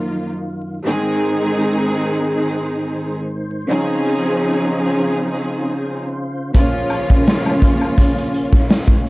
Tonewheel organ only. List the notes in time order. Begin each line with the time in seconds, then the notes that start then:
Already playing: F#2 D#3 F4
0.84 G#2 C5
3.69 C#3 F4
6.54 A#2 C#4 F4